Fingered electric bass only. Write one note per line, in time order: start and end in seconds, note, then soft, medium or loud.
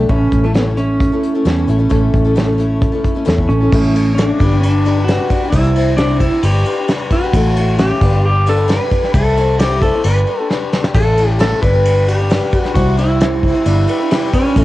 0.09 0.29 A1 medium
0.32 1.09 A1 medium
1.45 1.65 E2 medium
1.68 1.88 A1 medium
1.91 2.10 A1 medium
2.14 2.91 A1 medium
3.27 3.47 E2 medium
3.49 3.69 A1 medium
3.72 4.30 A1 loud
4.40 5.17 G1 loud
5.52 6.30 C2 loud
6.43 6.63 G1 loud
7.33 7.91 A1 loud
8.01 8.78 G1 loud
9.14 9.91 C2 loud
10.05 10.24 G1 loud
10.95 11.53 A1 loud
11.62 12.39 G1 loud
12.75 13.52 C2 loud
13.66 13.85 G1 loud
14.56 14.64 A1 loud